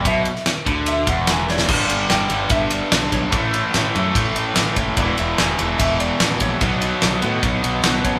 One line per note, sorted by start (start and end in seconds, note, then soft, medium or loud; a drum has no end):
0.05 0.25 B1 medium
0.05 0.26 B2 loud
0.05 0.46 E5 loud
0.05 kick loud
0.05 ride medium
0.25 ride medium
0.36 snare soft
0.46 snare loud
0.46 ride medium
0.66 1.05 D2 loud
0.66 1.07 D3 loud
0.66 kick medium
0.66 ride medium
0.86 1.08 E5 loud
0.86 ride medium
1.07 1.65 E1 loud
1.07 1.67 E2 medium
1.07 1.29 F#5 medium
1.07 kick loud
1.07 ride medium
1.27 1.50 G#5 loud
1.27 snare loud
1.27 ride medium
1.32 1.50 B4 medium
1.49 1.69 C#5 medium
1.49 1.69 D5 loud
1.49 snare medium
1.59 snare loud
1.68 1.84 G1 medium
1.68 1.88 G2 medium
1.68 1.89 D3 loud
1.68 1.89 G3 loud
1.68 1.89 B3 loud
1.68 1.89 D4 loud
1.68 1.91 D5 loud
1.68 kick loud
1.68 crash loud
1.89 2.05 G1 medium
1.89 2.07 G2 medium
1.89 2.08 D3 medium
1.89 2.07 G3 medium
1.89 2.08 B3 medium
1.89 2.08 D4 medium
1.89 2.09 F#5 loud
1.89 ride medium
2.09 2.26 G1 loud
2.09 2.28 G2 medium
2.09 2.28 D3 medium
2.09 2.28 G3 medium
2.09 2.29 B3 medium
2.09 2.29 D4 medium
2.09 2.48 G5 loud
2.09 snare medium
2.09 ride medium
2.29 2.46 G1 medium
2.29 2.48 G2 medium
2.29 2.48 D3 medium
2.29 2.49 G3 medium
2.29 2.49 B3 medium
2.29 2.50 D4 medium
2.29 ride medium
2.50 2.80 G1 medium
2.50 2.69 G2 medium
2.50 2.70 D3 medium
2.50 2.71 G3 medium
2.50 2.70 B3 loud
2.50 2.71 D4 loud
2.50 2.70 E5 loud
2.50 kick loud
2.50 ride loud
2.70 2.91 G2 medium
2.70 2.91 D3 medium
2.70 2.92 G3 medium
2.70 2.92 B3 medium
2.70 2.92 D4 medium
2.70 2.91 D5 loud
2.70 ride medium
2.92 3.07 B1 medium
2.92 3.11 G2 medium
2.92 3.12 D3 medium
2.92 3.12 G3 medium
2.92 3.13 B3 medium
2.92 3.13 D4 medium
2.92 3.11 D5 medium
2.92 snare loud
2.92 ride loud
3.12 3.27 B1 loud
3.12 3.32 G2 medium
3.12 3.32 D3 loud
3.12 3.32 G3 loud
3.12 3.33 B3 medium
3.12 3.33 D4 loud
3.12 3.51 C#5 medium
3.12 kick medium
3.12 ride medium
3.32 3.63 A1 medium
3.32 3.52 A2 medium
3.32 3.53 E3 medium
3.32 3.53 A3 loud
3.32 3.54 C#4 loud
3.32 3.54 E4 loud
3.32 kick loud
3.32 ride loud
3.54 3.73 A2 medium
3.54 3.74 E3 loud
3.54 3.74 A3 medium
3.54 3.74 C#4 medium
3.54 3.75 E4 loud
3.54 ride medium
3.74 3.89 A1 loud
3.74 3.93 A2 medium
3.74 3.94 E3 medium
3.74 3.94 A3 medium
3.74 3.94 C#4 medium
3.74 3.95 E4 loud
3.74 snare medium
3.74 ride medium
3.94 4.10 F#2 loud
3.94 4.13 A2 medium
3.94 4.14 E3 medium
3.94 4.14 A3 medium
3.94 4.14 C#4 medium
3.94 4.15 E4 loud
3.94 ride medium
4.15 4.30 A1 loud
4.15 4.34 A2 medium
4.15 4.35 E3 medium
4.15 4.35 A3 loud
4.15 4.36 C#4 loud
4.15 4.36 E4 loud
4.15 kick loud
4.15 ride loud
4.36 4.51 A1 medium
4.36 4.56 A2 medium
4.36 4.56 E3 medium
4.36 4.56 A3 medium
4.36 4.56 C#4 medium
4.36 4.56 E4 medium
4.36 ride medium
4.56 4.72 A1 medium
4.56 4.76 A2 medium
4.56 4.76 E3 medium
4.56 4.76 A3 medium
4.56 4.77 C#4 loud
4.56 4.77 E4 medium
4.56 4.78 B4 medium
4.56 snare loud
4.56 ride loud
4.76 4.92 F#1 medium
4.76 4.96 A2 loud
4.76 4.96 E3 medium
4.76 4.97 A3 loud
4.76 4.97 C#4 loud
4.76 4.97 E4 medium
4.76 4.83 C#5 loud
4.76 kick medium
4.76 ride medium
4.97 5.12 E1 loud
4.97 5.57 E2 medium
4.97 5.58 B2 medium
4.97 5.18 E3 loud
4.97 5.18 G#3 loud
4.97 5.19 B3 loud
4.97 5.19 E4 loud
4.97 5.36 D5 loud
4.97 kick loud
4.97 ride loud
5.18 5.33 E1 loud
5.18 5.38 E3 loud
5.18 5.38 G#3 medium
5.18 5.39 B3 loud
5.18 5.39 E4 loud
5.18 ride medium
5.38 5.54 E1 loud
5.38 5.58 E3 medium
5.38 5.59 G#3 medium
5.38 5.60 B3 medium
5.38 5.59 E4 loud
5.38 5.81 G#5 loud
5.38 snare loud
5.38 ride loud
5.59 5.75 E1 loud
5.59 6.62 E2 medium
5.59 6.59 B2 medium
5.59 5.78 E3 medium
5.59 5.79 G#3 medium
5.59 5.80 B3 medium
5.59 5.80 E4 loud
5.59 ride medium
5.78 6.09 E1 medium
5.78 5.98 E3 medium
5.78 5.98 G#3 loud
5.78 6.00 B3 medium
5.78 6.00 E4 loud
5.78 5.98 E5 loud
5.78 kick loud
5.78 ride loud
5.99 6.19 E3 medium
5.99 6.19 G#3 medium
5.99 6.20 B3 medium
5.99 6.20 E4 medium
5.99 6.41 D5 loud
5.99 ride medium
6.20 6.36 A1 medium
6.20 6.40 E3 loud
6.20 6.40 G#3 medium
6.20 6.41 B3 medium
6.20 6.41 E4 medium
6.20 snare loud
6.20 ride loud
6.40 6.56 A#1 medium
6.40 6.60 E3 medium
6.40 6.60 G#3 loud
6.40 6.62 B3 medium
6.40 6.61 E4 loud
6.40 6.79 C#5 medium
6.40 kick medium
6.40 ride medium
6.61 6.91 B1 medium
6.61 6.80 B2 medium
6.61 6.80 D#3 loud
6.61 6.81 F#3 medium
6.61 6.82 B3 loud
6.61 6.81 D#4 loud
6.61 kick loud
6.61 ride loud
6.81 7.00 B2 medium
6.81 7.01 D#3 medium
6.81 7.01 F#3 medium
6.81 7.02 B3 medium
6.81 7.02 D#4 medium
6.81 ride medium
7.02 7.18 B1 medium
7.02 7.20 B2 medium
7.02 7.21 D#3 medium
7.02 7.22 F#3 medium
7.02 7.23 B3 medium
7.02 7.23 D#4 medium
7.02 snare loud
7.02 ride medium
7.22 7.38 A2 loud
7.22 7.41 B2 medium
7.22 7.41 D#3 medium
7.22 7.42 F#3 medium
7.22 7.42 B3 medium
7.22 7.42 D#4 medium
7.22 ride medium
7.42 7.58 B1 loud
7.42 7.62 B2 loud
7.42 7.62 D#3 loud
7.42 7.62 F#3 loud
7.42 7.63 B3 medium
7.42 7.63 D#4 loud
7.42 kick loud
7.42 ride loud
7.63 7.79 B1 medium
7.63 7.83 B2 medium
7.63 7.83 D#3 medium
7.63 7.84 F#3 medium
7.63 7.84 B3 medium
7.63 7.85 D#4 medium
7.63 ride medium
7.84 7.99 B1 medium
7.84 8.04 B2 medium
7.84 8.04 D#3 medium
7.84 8.04 F#3 medium
7.84 8.05 B3 medium
7.84 8.05 D#4 medium
7.84 8.03 B4 medium
7.84 snare loud
7.84 ride loud
8.05 8.19 A1 medium
8.05 8.19 B2 medium
8.05 8.19 D#3 medium
8.05 8.19 F#3 loud
8.05 8.19 B3 medium
8.05 8.19 D#4 medium
8.05 8.19 C#5 medium
8.05 kick medium
8.05 ride medium